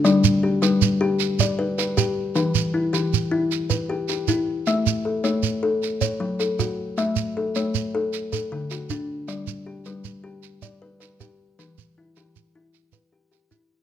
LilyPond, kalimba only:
\new Staff \with { instrumentName = "Kalimba" } { \time 12/8 \key g \lydian \tempo 4. = 104 << { d''4 g'8 b'4. r8 d''4 b'4. | b'4 e'8 g'4. r8 b'4 g'4. | e''4 a'8 cis''4. r8 cis''4 a'4. | e''4 a'8 cis''4. r8 a'4 fis'4. |
d''4 g'8 b'4. r8 d''4 b'4. | b'4 e'8 g'4. r8 b'4 g'4. | } \\ { g4 r8 g4 g'4 r8 b'4 g'4 | e4 r8 e4 e'4 r8 g'4 e'4 | a4 r8 a4 a'8 r4 fis4 fis'4 | a4 r8 a4 a'8 r4 d4 d'4 |
g4 r8 g4 g'4 r8 b'4 g'4 | e4 r8 e4 e'4 r8 g'4 e'4 | } >> }